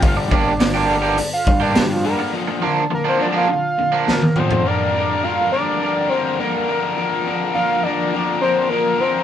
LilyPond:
<<
  \new Staff \with { instrumentName = "Analog synth lead" } { \time 4/4 \key g \minor \tempo 4 = 104 f''16 d''2 f''8 d''16 g'16 f'16 bes'8 | r4 bes'16 c''16 d''16 f''16 f''4 bes'8 c''8 | d''4 f''8 d''4 c''8 bes'8. r16 | r4 f''8 d''4 c''8 bes'8 c''8 | }
  \new Staff \with { instrumentName = "Overdriven electric guitar" } { \time 4/4 \key g \minor r8 <bes d' g'>16 r8 <bes d' g'>16 r16 <bes d' g'>16 r8. <bes d' g'>16 r4 | r8 <f bes d'>16 r8 <f bes d'>16 r16 <f bes d'>16 r8. <f bes d'>16 r4 | r1 | r1 | }
  \new Staff \with { instrumentName = "Overdriven electric guitar" } { \clef bass \time 4/4 \key g \minor <g, d g>8 <g, d>8 <g, d>8 <g, d g>8 <g, d>8 <g, d>8 <g, d>8 <g, d g>8 | <bes, d f>8 <bes, d>8 <bes, d>8 <bes, d f>8 <bes, d>8 <bes, d>8 <bes, d>8 <bes, d f>8 | <g, d g bes d' bes'>8 <g, d g bes d' bes'>8 <g, d g bes d' bes'>8 <g, d g bes d' bes'>8 <g, d g bes d' bes'>8 <g, d g bes d' bes'>8 <g, d g bes d' bes'>8 <g, d g bes d' bes'>8 | <bes, d f bes d' bes'>8 <bes, d f bes d' bes'>8 <bes, d f bes d' bes'>8 <bes, d f bes d' bes'>8 <bes, d f bes d' bes'>8 <bes, d f bes d' bes'>8 <bes, d f bes d' bes'>8 <bes, d f bes d' bes'>8 | }
  \new Staff \with { instrumentName = "Fingered electric bass" } { \clef bass \time 4/4 \key g \minor g,,8 g,,2 g,4. | r1 | r1 | r1 | }
  \new DrumStaff \with { instrumentName = "Drums" } \drummode { \time 4/4 <hho bd>8 bd8 <hho sn>4 hho8 bd8 <hho sn>4 | r4 r4 r4 sn16 tommh16 toml16 tomfh16 | r4 r4 r4 r4 | r4 r4 r4 r4 | }
>>